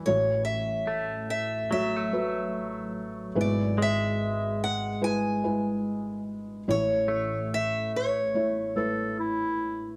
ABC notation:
X:1
M:4/4
L:1/16
Q:1/4=72
K:Amix
V:1 name="Steel-string acoustic guitar"
c2 e4 e2 e6 z2 | d2 e4 f2 ^g6 z2 | c4 e2 c8 z2 |]
V:2 name="Clarinet"
z16 | z16 | z8 z2 A2 E4 |]
V:3 name="Felt piano"
[A,Fc]8 [A,Fc]2 [A,FB]6 | [^G,EB]8 [G,EB]2 [G,EB]6 | [A,Ec]8 [A,Ec]2 [A,EB]6 |]
V:4 name="Felt piano" clef=bass
[A,,,A,,]16 | [^G,,,B,,]16 | [A,,,A,,]16 |]
V:5 name="Clean electric guitar"
[E,A,DE]3 z A,4 F, A,6- A,- | A,2 ^G,12- G,2- | ^G, z A,12- A,2 |]